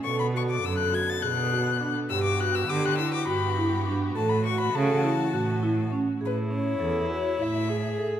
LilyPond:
<<
  \new Staff \with { instrumentName = "Violin" } { \time 7/8 \key a \major \tempo 4 = 102 cis'''16 b''16 cis'''16 d'''16 e'''16 fis'''16 gis'''16 a'''16 fis'''4 r8 | e'''16 d'''16 fis'''16 e'''16 d'''16 fis'''16 e'''16 d'''16 b''4 r8 | a''16 b''16 cis'''16 b''16 a''2 r8 | b'8 cis''4 cis''8 e''4 r8 | }
  \new Staff \with { instrumentName = "Vibraphone" } { \time 7/8 \key a \major a'8 fis'8 a'8 fis'8 gis'8 fis'8 d'8 | g'8 fis'8 g'8 e'8 fis'8 e'8 d'8 | a'8 fis'8 a'8 e'8 fis'8 e'8 cis'8 | gis'8 cis'8 a'8 fis'8 e'8 gis'8 a'8 | }
  \new Staff \with { instrumentName = "Viola" } { \time 7/8 \key a \major r2. r8 | r2. r8 | r2. r8 | e'2~ e'8 gis'4 | }
  \new Staff \with { instrumentName = "String section" } { \time 7/8 \key a \major << { <d a'>2.~ <d a'>8 | <fis' g'>2.~ <fis' g'>8 | <e fis'>2.~ <e fis'>8 | r2. r8 | } \\ { b2.~ b8~ | b2.~ b8 | a2.~ a8 | r2. r8 | } >> }
  \new Staff \with { instrumentName = "Cello" } { \clef bass \time 7/8 \key a \major b,4 fis,8 r8 b,4. | g,4 d8 r8 g,4. | a,4 cis8 r8 a,4. | a,4 e,8 r8 a,4. | }
>>